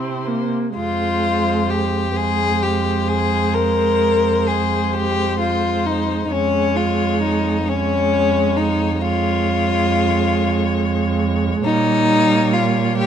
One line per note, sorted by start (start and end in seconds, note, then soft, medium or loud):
0.00 0.51 C3 medium
0.00 0.29 C4 medium
0.00 0.28 E4 medium
0.00 0.52 C5 soft
0.27 0.75 A#3 medium
0.76 6.28 F2 soft
0.76 2.12 G#3 soft
0.76 1.71 F4 medium
0.76 2.13 C5 soft
1.70 2.18 G4 medium
2.16 6.28 G#3 medium
2.16 2.64 G#4 medium
2.16 6.27 C5 medium
2.63 3.09 G4 medium
3.08 3.55 G#4 medium
3.54 4.48 A#4 medium
4.47 4.95 G#4 medium
4.93 5.38 G4 medium
5.39 5.87 F4 medium
5.86 6.24 D#4 medium
6.25 6.33 D#4 soft
6.31 11.59 F2 soft
6.31 7.64 G#3 medium
6.31 6.78 C#4 medium
6.31 7.64 C#5 medium
6.76 7.21 F4 medium
7.22 7.70 D#4 medium
7.67 8.97 G#3 medium
7.67 8.58 C#4 medium
7.67 8.97 C#5 soft
8.57 9.02 D#4 medium
8.99 11.66 G#3 medium
8.99 11.20 F4 medium
8.99 11.59 C#5 medium
11.64 13.06 A#2 medium
11.64 12.98 G3 medium
11.64 12.55 D#4 loud
11.64 12.95 C#5 medium
12.53 12.97 F4 medium
12.96 13.06 G3 medium
12.96 13.06 G4 loud
12.96 13.06 C#5 medium